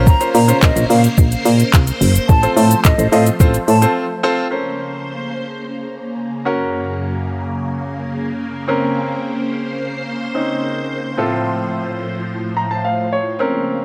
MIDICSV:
0, 0, Header, 1, 6, 480
1, 0, Start_track
1, 0, Key_signature, -5, "minor"
1, 0, Tempo, 555556
1, 60, Time_signature, 4, 2, 24, 8
1, 11966, End_track
2, 0, Start_track
2, 0, Title_t, "Flute"
2, 0, Program_c, 0, 73
2, 58, Note_on_c, 0, 82, 106
2, 260, Note_off_c, 0, 82, 0
2, 299, Note_on_c, 0, 82, 80
2, 500, Note_off_c, 0, 82, 0
2, 536, Note_on_c, 0, 75, 86
2, 739, Note_off_c, 0, 75, 0
2, 778, Note_on_c, 0, 77, 89
2, 879, Note_off_c, 0, 77, 0
2, 1975, Note_on_c, 0, 81, 107
2, 2178, Note_off_c, 0, 81, 0
2, 2217, Note_on_c, 0, 81, 78
2, 2419, Note_off_c, 0, 81, 0
2, 2455, Note_on_c, 0, 75, 86
2, 2658, Note_off_c, 0, 75, 0
2, 2696, Note_on_c, 0, 77, 82
2, 2798, Note_off_c, 0, 77, 0
2, 3178, Note_on_c, 0, 81, 89
2, 3380, Note_off_c, 0, 81, 0
2, 11966, End_track
3, 0, Start_track
3, 0, Title_t, "Grand piano"
3, 0, Program_c, 1, 0
3, 0, Note_on_c, 1, 61, 99
3, 0, Note_on_c, 1, 65, 96
3, 0, Note_on_c, 1, 70, 93
3, 0, Note_on_c, 1, 72, 115
3, 106, Note_off_c, 1, 61, 0
3, 107, Note_off_c, 1, 65, 0
3, 108, Note_off_c, 1, 70, 0
3, 108, Note_off_c, 1, 72, 0
3, 175, Note_on_c, 1, 61, 75
3, 176, Note_on_c, 1, 65, 70
3, 177, Note_on_c, 1, 70, 70
3, 179, Note_on_c, 1, 72, 91
3, 301, Note_off_c, 1, 61, 0
3, 302, Note_off_c, 1, 65, 0
3, 302, Note_off_c, 1, 70, 0
3, 303, Note_off_c, 1, 72, 0
3, 414, Note_on_c, 1, 61, 77
3, 415, Note_on_c, 1, 65, 72
3, 417, Note_on_c, 1, 70, 72
3, 419, Note_on_c, 1, 72, 83
3, 912, Note_off_c, 1, 61, 0
3, 913, Note_off_c, 1, 65, 0
3, 914, Note_off_c, 1, 70, 0
3, 915, Note_off_c, 1, 72, 0
3, 2096, Note_on_c, 1, 60, 79
3, 2096, Note_on_c, 1, 65, 70
3, 2098, Note_on_c, 1, 69, 69
3, 2100, Note_on_c, 1, 72, 86
3, 2345, Note_off_c, 1, 60, 0
3, 2346, Note_off_c, 1, 65, 0
3, 2347, Note_off_c, 1, 69, 0
3, 2347, Note_off_c, 1, 72, 0
3, 2578, Note_on_c, 1, 69, 53
3, 2582, Note_on_c, 1, 72, 57
3, 2641, Note_off_c, 1, 69, 0
3, 2643, Note_off_c, 1, 72, 0
3, 2698, Note_on_c, 1, 60, 82
3, 2699, Note_on_c, 1, 65, 78
3, 2699, Note_on_c, 1, 69, 76
3, 2702, Note_on_c, 1, 75, 94
3, 2823, Note_off_c, 1, 60, 0
3, 2823, Note_off_c, 1, 65, 0
3, 2823, Note_off_c, 1, 69, 0
3, 2825, Note_off_c, 1, 75, 0
3, 2937, Note_on_c, 1, 60, 93
3, 2939, Note_on_c, 1, 65, 87
3, 2941, Note_on_c, 1, 69, 83
3, 2942, Note_on_c, 1, 72, 100
3, 3062, Note_off_c, 1, 60, 0
3, 3063, Note_off_c, 1, 65, 0
3, 3064, Note_off_c, 1, 69, 0
3, 3065, Note_off_c, 1, 72, 0
3, 3175, Note_on_c, 1, 69, 50
3, 3180, Note_on_c, 1, 72, 55
3, 3239, Note_off_c, 1, 69, 0
3, 3241, Note_off_c, 1, 72, 0
3, 3297, Note_on_c, 1, 60, 83
3, 3299, Note_on_c, 1, 65, 77
3, 3300, Note_on_c, 1, 69, 76
3, 3302, Note_on_c, 1, 72, 93
3, 3484, Note_off_c, 1, 60, 0
3, 3485, Note_off_c, 1, 65, 0
3, 3485, Note_off_c, 1, 69, 0
3, 3486, Note_off_c, 1, 72, 0
3, 3657, Note_on_c, 1, 60, 107
3, 3659, Note_on_c, 1, 65, 100
3, 3661, Note_on_c, 1, 69, 99
3, 3661, Note_on_c, 1, 72, 116
3, 3844, Note_off_c, 1, 60, 0
3, 3845, Note_off_c, 1, 65, 0
3, 3846, Note_off_c, 1, 69, 0
3, 3846, Note_off_c, 1, 72, 0
3, 3893, Note_on_c, 1, 61, 73
3, 3896, Note_on_c, 1, 70, 65
3, 3902, Note_on_c, 1, 72, 80
3, 5542, Note_off_c, 1, 61, 0
3, 5544, Note_off_c, 1, 70, 0
3, 5547, Note_off_c, 1, 72, 0
3, 5575, Note_on_c, 1, 61, 75
3, 5580, Note_on_c, 1, 66, 69
3, 5584, Note_on_c, 1, 70, 83
3, 7463, Note_off_c, 1, 61, 0
3, 7465, Note_off_c, 1, 66, 0
3, 7467, Note_off_c, 1, 70, 0
3, 7497, Note_on_c, 1, 60, 72
3, 7502, Note_on_c, 1, 61, 70
3, 7506, Note_on_c, 1, 70, 80
3, 8909, Note_off_c, 1, 60, 0
3, 8912, Note_off_c, 1, 61, 0
3, 8914, Note_off_c, 1, 70, 0
3, 8938, Note_on_c, 1, 60, 55
3, 8941, Note_on_c, 1, 61, 47
3, 8941, Note_on_c, 1, 63, 59
3, 9645, Note_off_c, 1, 60, 0
3, 9655, Note_on_c, 1, 45, 72
3, 9658, Note_on_c, 1, 60, 67
3, 9660, Note_off_c, 1, 61, 0
3, 9660, Note_off_c, 1, 63, 0
3, 9660, Note_on_c, 1, 65, 68
3, 9663, Note_on_c, 1, 69, 79
3, 10858, Note_on_c, 1, 82, 65
3, 10970, Note_off_c, 1, 82, 0
3, 10980, Note_on_c, 1, 81, 64
3, 11091, Note_off_c, 1, 81, 0
3, 11099, Note_on_c, 1, 77, 64
3, 11322, Note_off_c, 1, 77, 0
3, 11340, Note_on_c, 1, 73, 69
3, 11542, Note_off_c, 1, 45, 0
3, 11544, Note_off_c, 1, 60, 0
3, 11545, Note_off_c, 1, 65, 0
3, 11547, Note_off_c, 1, 69, 0
3, 11563, Note_off_c, 1, 73, 0
3, 11571, Note_on_c, 1, 60, 72
3, 11577, Note_on_c, 1, 61, 67
3, 11581, Note_on_c, 1, 70, 81
3, 11966, Note_off_c, 1, 60, 0
3, 11966, Note_off_c, 1, 61, 0
3, 11966, Note_off_c, 1, 70, 0
3, 11966, End_track
4, 0, Start_track
4, 0, Title_t, "String machine"
4, 0, Program_c, 2, 50
4, 0, Note_on_c, 2, 49, 85
4, 0, Note_on_c, 2, 58, 77
4, 0, Note_on_c, 2, 72, 98
4, 1958, Note_off_c, 2, 58, 0
4, 1959, Note_off_c, 2, 49, 0
4, 1977, Note_on_c, 2, 57, 82
4, 1978, Note_on_c, 2, 53, 91
4, 3866, Note_off_c, 2, 72, 0
4, 3879, Note_off_c, 2, 57, 0
4, 3880, Note_off_c, 2, 53, 0
4, 3898, Note_on_c, 2, 58, 72
4, 3899, Note_on_c, 2, 49, 80
4, 3900, Note_on_c, 2, 72, 90
4, 5563, Note_off_c, 2, 72, 0
4, 5584, Note_on_c, 2, 42, 82
4, 7482, Note_off_c, 2, 42, 0
4, 7503, Note_on_c, 2, 72, 89
4, 9624, Note_off_c, 2, 58, 0
4, 9625, Note_off_c, 2, 49, 0
4, 9658, Note_on_c, 2, 45, 84
4, 9658, Note_on_c, 2, 53, 74
4, 11559, Note_off_c, 2, 45, 0
4, 11559, Note_off_c, 2, 53, 0
4, 11579, Note_on_c, 2, 49, 82
4, 11582, Note_on_c, 2, 58, 76
4, 11966, Note_off_c, 2, 49, 0
4, 11966, Note_off_c, 2, 58, 0
4, 11966, Note_off_c, 2, 72, 0
4, 11966, End_track
5, 0, Start_track
5, 0, Title_t, "FM bass"
5, 0, Program_c, 3, 39
5, 0, Note_on_c, 3, 34, 103
5, 131, Note_off_c, 3, 34, 0
5, 299, Note_on_c, 3, 46, 102
5, 455, Note_off_c, 3, 46, 0
5, 543, Note_on_c, 3, 34, 103
5, 620, Note_off_c, 3, 34, 0
5, 658, Note_on_c, 3, 34, 98
5, 736, Note_off_c, 3, 34, 0
5, 778, Note_on_c, 3, 46, 103
5, 934, Note_off_c, 3, 46, 0
5, 1018, Note_on_c, 3, 34, 101
5, 1174, Note_off_c, 3, 34, 0
5, 1257, Note_on_c, 3, 46, 102
5, 1414, Note_off_c, 3, 46, 0
5, 1501, Note_on_c, 3, 36, 95
5, 1656, Note_off_c, 3, 36, 0
5, 1737, Note_on_c, 3, 30, 98
5, 1894, Note_off_c, 3, 30, 0
5, 1980, Note_on_c, 3, 33, 105
5, 2136, Note_off_c, 3, 33, 0
5, 2217, Note_on_c, 3, 45, 108
5, 2374, Note_off_c, 3, 45, 0
5, 2463, Note_on_c, 3, 33, 101
5, 2540, Note_off_c, 3, 33, 0
5, 2578, Note_on_c, 3, 33, 107
5, 2657, Note_off_c, 3, 33, 0
5, 2697, Note_on_c, 3, 45, 104
5, 2854, Note_off_c, 3, 45, 0
5, 2939, Note_on_c, 3, 33, 106
5, 3095, Note_off_c, 3, 33, 0
5, 3179, Note_on_c, 3, 45, 100
5, 3335, Note_off_c, 3, 45, 0
5, 11966, End_track
6, 0, Start_track
6, 0, Title_t, "Drums"
6, 59, Note_on_c, 9, 36, 116
6, 59, Note_on_c, 9, 82, 67
6, 146, Note_off_c, 9, 36, 0
6, 146, Note_off_c, 9, 82, 0
6, 179, Note_on_c, 9, 42, 49
6, 179, Note_on_c, 9, 82, 50
6, 265, Note_off_c, 9, 42, 0
6, 265, Note_off_c, 9, 82, 0
6, 300, Note_on_c, 9, 46, 87
6, 300, Note_on_c, 9, 82, 59
6, 387, Note_off_c, 9, 46, 0
6, 387, Note_off_c, 9, 82, 0
6, 419, Note_on_c, 9, 42, 79
6, 419, Note_on_c, 9, 82, 80
6, 506, Note_off_c, 9, 42, 0
6, 506, Note_off_c, 9, 82, 0
6, 537, Note_on_c, 9, 82, 87
6, 540, Note_on_c, 9, 39, 117
6, 542, Note_on_c, 9, 36, 106
6, 623, Note_off_c, 9, 82, 0
6, 627, Note_off_c, 9, 39, 0
6, 628, Note_off_c, 9, 36, 0
6, 662, Note_on_c, 9, 42, 61
6, 662, Note_on_c, 9, 82, 63
6, 748, Note_off_c, 9, 42, 0
6, 748, Note_off_c, 9, 82, 0
6, 781, Note_on_c, 9, 46, 72
6, 781, Note_on_c, 9, 82, 55
6, 867, Note_off_c, 9, 46, 0
6, 867, Note_off_c, 9, 82, 0
6, 899, Note_on_c, 9, 42, 76
6, 899, Note_on_c, 9, 82, 79
6, 985, Note_off_c, 9, 42, 0
6, 985, Note_off_c, 9, 82, 0
6, 1017, Note_on_c, 9, 82, 77
6, 1018, Note_on_c, 9, 36, 113
6, 1103, Note_off_c, 9, 82, 0
6, 1105, Note_off_c, 9, 36, 0
6, 1140, Note_on_c, 9, 42, 58
6, 1140, Note_on_c, 9, 82, 57
6, 1226, Note_off_c, 9, 42, 0
6, 1226, Note_off_c, 9, 82, 0
6, 1257, Note_on_c, 9, 46, 77
6, 1257, Note_on_c, 9, 82, 57
6, 1344, Note_off_c, 9, 46, 0
6, 1344, Note_off_c, 9, 82, 0
6, 1379, Note_on_c, 9, 42, 71
6, 1379, Note_on_c, 9, 82, 66
6, 1466, Note_off_c, 9, 42, 0
6, 1466, Note_off_c, 9, 82, 0
6, 1499, Note_on_c, 9, 39, 109
6, 1499, Note_on_c, 9, 82, 80
6, 1501, Note_on_c, 9, 36, 118
6, 1585, Note_off_c, 9, 39, 0
6, 1586, Note_off_c, 9, 82, 0
6, 1587, Note_off_c, 9, 36, 0
6, 1618, Note_on_c, 9, 42, 60
6, 1618, Note_on_c, 9, 82, 60
6, 1705, Note_off_c, 9, 42, 0
6, 1705, Note_off_c, 9, 82, 0
6, 1741, Note_on_c, 9, 46, 89
6, 1741, Note_on_c, 9, 82, 66
6, 1828, Note_off_c, 9, 46, 0
6, 1828, Note_off_c, 9, 82, 0
6, 1862, Note_on_c, 9, 42, 75
6, 1862, Note_on_c, 9, 82, 77
6, 1948, Note_off_c, 9, 42, 0
6, 1948, Note_off_c, 9, 82, 0
6, 1979, Note_on_c, 9, 82, 65
6, 1980, Note_on_c, 9, 36, 116
6, 2066, Note_off_c, 9, 36, 0
6, 2066, Note_off_c, 9, 82, 0
6, 2101, Note_on_c, 9, 42, 52
6, 2101, Note_on_c, 9, 82, 54
6, 2187, Note_off_c, 9, 42, 0
6, 2187, Note_off_c, 9, 82, 0
6, 2221, Note_on_c, 9, 46, 85
6, 2221, Note_on_c, 9, 82, 61
6, 2307, Note_off_c, 9, 46, 0
6, 2307, Note_off_c, 9, 82, 0
6, 2341, Note_on_c, 9, 42, 79
6, 2341, Note_on_c, 9, 82, 78
6, 2427, Note_off_c, 9, 42, 0
6, 2427, Note_off_c, 9, 82, 0
6, 2457, Note_on_c, 9, 82, 90
6, 2461, Note_on_c, 9, 39, 114
6, 2463, Note_on_c, 9, 36, 107
6, 2544, Note_off_c, 9, 82, 0
6, 2547, Note_off_c, 9, 39, 0
6, 2549, Note_off_c, 9, 36, 0
6, 2583, Note_on_c, 9, 42, 63
6, 2583, Note_on_c, 9, 82, 62
6, 2669, Note_off_c, 9, 42, 0
6, 2669, Note_off_c, 9, 82, 0
6, 2701, Note_on_c, 9, 46, 74
6, 2701, Note_on_c, 9, 82, 54
6, 2787, Note_off_c, 9, 46, 0
6, 2787, Note_off_c, 9, 82, 0
6, 2820, Note_on_c, 9, 42, 74
6, 2820, Note_on_c, 9, 82, 77
6, 2907, Note_off_c, 9, 42, 0
6, 2907, Note_off_c, 9, 82, 0
6, 2938, Note_on_c, 9, 82, 77
6, 2939, Note_on_c, 9, 36, 115
6, 3024, Note_off_c, 9, 82, 0
6, 3025, Note_off_c, 9, 36, 0
6, 3060, Note_on_c, 9, 42, 54
6, 3060, Note_on_c, 9, 82, 57
6, 3147, Note_off_c, 9, 42, 0
6, 3147, Note_off_c, 9, 82, 0
6, 3180, Note_on_c, 9, 46, 78
6, 3180, Note_on_c, 9, 82, 56
6, 3267, Note_off_c, 9, 46, 0
6, 3267, Note_off_c, 9, 82, 0
6, 3302, Note_on_c, 9, 42, 69
6, 3302, Note_on_c, 9, 82, 67
6, 3389, Note_off_c, 9, 42, 0
6, 3389, Note_off_c, 9, 82, 0
6, 11966, End_track
0, 0, End_of_file